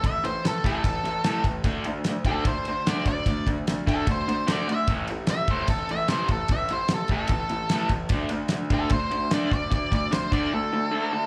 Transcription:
<<
  \new Staff \with { instrumentName = "Lead electric guitar" } { \time 4/4 \key d \dorian \tempo 4 = 149 e''8 c''8 a'8 a'2 r8 | r4. a'8 c''4 d''8 d''8~ | d''8 r4 a'8 c''4 d''8 e''8 | r4 e''8 c''8 a'8 e''8 c''8 a'8 |
e''8 c''8 a'8 a'2 r8 | r4. a'8 c''4 d''8 d''8 | d''8 d''8 c''8 d''8 a'2 | }
  \new Staff \with { instrumentName = "Overdriven electric guitar" } { \clef bass \time 4/4 \key d \dorian <a, e>8 <a, e>8 <a, e>8 <a, e a>8 <a, e>8 <a, e>8 <a, e a>8 <a, e>8 | <d a d'>8 <d a>8 <d a>8 <d a d'>8 <d a>8 <d a>8 <d a d'>8 <d a>8 | <d a>8 <d a>8 <d a>8 <d a d'>8 <d a>8 <d a>8 <d a d'>8 <d a>8 | <a, e a>8 <a, e>8 <a, e>8 <a, e a>8 <a, e>8 <a, e>8 <a, e a>8 <a, e>8 |
<a, e>8 <a, e>8 <a, e>8 <a, e a>8 <a, e>8 <a, e>8 <a, e a>8 <a, e>8 | <d a d'>8 <d a>8 <d a>8 <d a d'>8 <d a>8 <d a>8 <d a d'>8 <d a>8 | <d a>8 <d a>8 <d a>8 <d a d'>8 <d a>8 <d a>8 <d a d'>8 <d a>8 | }
  \new DrumStaff \with { instrumentName = "Drums" } \drummode { \time 4/4 <bd cymr>8 cymr8 <cymr sn>8 <bd cymr>8 <bd cymr>8 cymr8 <cymr sn>8 <bd cymr>8 | <bd cymr>8 cymr8 <cymr sn>8 <bd cymr>8 <bd cymr>8 cymr8 <cymr sn>8 <bd cymr>8 | <bd cymr>8 <bd cymr>8 <cymr sn>8 <bd cymr>8 <bd cymr>8 cymr8 <cymr sn>8 cymr8 | <bd cymr>8 cymr8 <cymr sn>8 <bd cymr>8 <bd cymr>8 cymr8 <cymr sn>8 <bd cymr>8 |
<bd cymr>8 cymr8 <cymr sn>8 <bd cymr>8 <bd cymr>8 cymr8 <cymr sn>8 <bd cymr>8 | <bd cymr>8 cymr8 <cymr sn>8 <bd cymr>8 <bd cymr>8 cymr8 <cymr sn>8 <bd cymr>8 | <bd cymr>8 <bd cymr>8 <cymr sn>8 <bd cymr>8 r4 r4 | }
>>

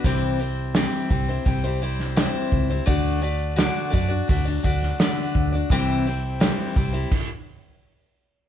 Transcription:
<<
  \new Staff \with { instrumentName = "Steel-string acoustic guitar" } { \time 4/4 \key c \lydian \tempo 4 = 85 <c e g c' e' c''>8 <g c' e' c''>8 <c e g c' e' c''>8 <g c' e' c''>16 <g c' e' c''>16 <g c' e' c''>16 <g c' e' c''>16 <g c' e' c''>8 <c e g c' e' c''>8. <g c' e' c''>16 | <d a d' fis' d''>8 <a d' fis' d''>8 <d a d' fis' d''>8 <a d' fis' d''>16 <d' fis' d''>16 <a d' fis' d''>16 <d' fis' d''>16 <a d' fis' d''>8 <d a d' fis' d''>8. <d' fis' d''>16 | <c e g c' e' c''>8 <g c' e' c''>8 <c e g c' e' c''>8 <g c' e' c''>16 <g c' e' c''>16 r2 | }
  \new Staff \with { instrumentName = "Picked electric bass" } { \clef bass \time 4/4 \key c \lydian c,4. c,8 c,4. cis,8 | d,4. fis,8 d,8 d,8 r8 d,8 | c,4. c,8 r2 | }
  \new DrumStaff \with { instrumentName = "Drums" } \drummode { \time 4/4 <hho bd>4 <hho sn>8 bd8 <hho bd>8. sn16 <hho sn>8 bd8 | <hho bd>4 <hho sn>8 bd8 <hho bd>8 bd16 sn16 <hho sn>8 bd8 | <hho bd>4 <hho sn>8 bd8 <cymc bd>4 r4 | }
>>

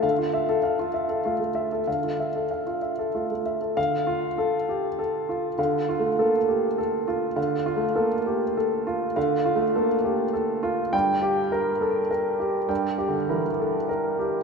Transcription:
<<
  \new Staff \with { instrumentName = "Upright piano" } { \time 3/4 \key d \minor \tempo 4 = 100 << { r2. | r2. | f''4 r2 | r2. |
r2. | r2. | g''4 r2 | r2. | } \\ { <a' f''>16 f'16 e''16 a'16 f''16 f'16 e''16 a'16 f'16 a16 e''16 a'16 | f''16 f'16 e''16 a'16 f''16 f'16 e''16 a'16 f'16 a16 e''16 a'16 | r8 f'8 a'8 g'8 a'8 f'8 | f''8 f'8 a'8 g'8 a'8 f'8 |
f''8 f'8 a'8 g'8 a'8 f'8 | f''8 f'8 a'8 g'8 a'8 f'8 | r8 g'8 bes'8 a'8 bes'8 g'8 | g''8 g'8 bes'8 a'8 bes'8 g'8 | } >> }
  \new Staff \with { instrumentName = "Upright piano" } { \clef bass \time 3/4 \key d \minor d2 a8 r8 | d2 a8 r8 | d2. | \tuplet 3/2 { d4 a8 } bes8 r4. |
\tuplet 3/2 { d4 a8 } bes8 r4. | \tuplet 3/2 { d4 a8 } bes8 r4. | g,2. | \tuplet 3/2 { g,4 d8 } e8 r4. | }
>>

